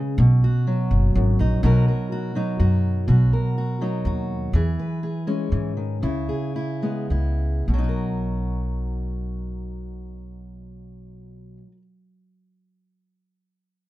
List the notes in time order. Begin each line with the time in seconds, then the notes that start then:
Already playing: C#3 G#3 C#4 G#4 B4
0.18 B1 B2
0.44 F#4
0.67 F#3
0.91 F#1
1.15 G#1 F#2
1.39 A#1 D#4
1.63 B1 B2 F#3 D#4 F#4 A#4
1.88 A#4
2.12 F#4
2.35 F#3 D#4
2.59 F#2 F#4
3.08 B1 B2 F#4
3.33 A#4
3.58 F#4
3.81 F#3 D#4
4.05 D#2 F#4
4.53 E2 E3 G#4
4.79 B4
5.03 G#4
5.27 G#3 C#4
5.52 G#2 E3
5.77 D#3
6.02 C#2 C#3 E4
6.29 G#4
6.56 E4
6.82 G#3 B3
7.10 C#2 E4
7.68 B1 B2
7.74 F#3
7.78 D#4
7.84 F#4
7.89 A#4